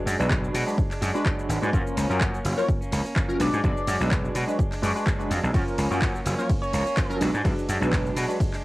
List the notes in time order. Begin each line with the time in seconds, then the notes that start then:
0.06 F#2 F#3 G#3 D4, open hi-hat, shaker
0.19 B1 G#3 D4 F#4 B4, shaker
0.30 F#3 G#3 D4, kick, clap, shaker
0.43 G#3 D4, shaker
0.53 B2 F#3 G#3 D4, open hi-hat, shaker
0.67 G#3 D4 F#4 B4, shaker
0.78 kick, shaker
0.90 G#3 D4, clap, open hi-hat, shaker
1.01 F#2 F#3 G#3 D4, open hi-hat, shaker
1.14 G#3 D4 F#4 B4, shaker
1.25 F#3 G#3 D4, kick, clap, shaker
1.39 shaker
1.49 G#1 F#3 G#3 D4, open hi-hat, shaker
1.62 G#2 G#3 D4 F#4 B4, shaker
1.73 F#2 F3 A#3 C#4 F4 A#4, kick, shaker
1.87 shaker
1.96 C#2 F3 A#3 C#4, open hi-hat, shaker
2.09 F#2 F#3 A#3 C#4 F4 A#4, shaker
2.21 F3 A#3, kick, clap, shaker
2.33 A#3 C#4, shaker
2.44 F#1 F3 A#3 C#4, open hi-hat, shaker
2.57 F#3 C#4 F4 A#4 C#5, shaker
2.69 kick, shaker
2.81 A#3 C#4, shaker
2.92 C#2 F3 A#3 C#4, open hi-hat, shaker
3.05 A#3 C#4, shaker
3.16 F3 A#3, kick, clap, shaker
3.28 F#3 C#4 F4 A#4, shaker
3.39 B1 F#3 G#3 D4 F#4 B4 D5, open hi-hat, shaker
3.53 G#2, shaker
3.63 B1 F#3 G#3 D4 F#4 B4 D5, kick, shaker
3.77 shaker
3.87 F#2 F#3 G#3 D4, open hi-hat, shaker
4.00 B1 G#3 D4 F#4 B4, shaker
4.11 F#3 G#3 D4, kick, clap, shaker
4.24 G#3 D4, shaker
4.34 B2 F#3 G#3 D4, open hi-hat, shaker
4.47 G#3 D4 F#4 B4, shaker
4.59 kick, shaker
4.71 G#3 D4, clap, open hi-hat, shaker
4.82 F#2 F#3 G#3 D4 F#4 B4, open hi-hat, shaker
4.95 G#3 D4 F#4 B4, shaker
5.06 F#3 G#3, kick, clap, shaker
5.19 G#3 D4 F#4 B4, shaker
5.30 F2 F#3 G#3 D4, open hi-hat, shaker
5.43 B1, shaker
5.54 F#2 F3 A#3 C#4 F4 A#4, kick, ride, shaker
5.68 shaker
5.78 C#2 F3 A#3 C#4, open hi-hat, shaker
5.90 F#2 F#3 A#3 C#4 F4 A#4, shaker
6.01 F3 A#3 C#4, kick, clap, ride, shaker
6.14 A#3 C#4, shaker
6.25 F#1 F3 A#3 C#4, open hi-hat, shaker
6.38 F#3 C#4 F4 A#4 C#5, shaker
6.49 kick, ride, shaker
6.62 A#3 C#4 C#5, shaker
6.73 C#2 F3 A#3 C#4, open hi-hat, shaker
6.85 A#3 C#4, shaker
6.97 F3 A#3 C#4, kick, clap, ride, shaker
7.09 F#3 C#4 F4 A#4, shaker
7.20 B1 F#3 G#3 D4 F#4 B4, open hi-hat, shaker
7.33 G#2 G#3 D4, shaker
7.44 B1 F#3 G#3 D4 F#4 B4, kick, ride, shaker
7.58 shaker
7.68 F#2 F#3 G#3 D4, open hi-hat, shaker
7.80 B1 G#3 D4 F#4 B4, shaker
7.92 F#3 G#3 D4, kick, clap, ride, shaker
8.05 G#3 D4, shaker
8.16 B2 F#3 G#3 D4, open hi-hat, shaker
8.28 G#3 D4 F#4 B4, shaker
8.40 kick, ride, shaker
8.53 G#3 D4, clap, open hi-hat, shaker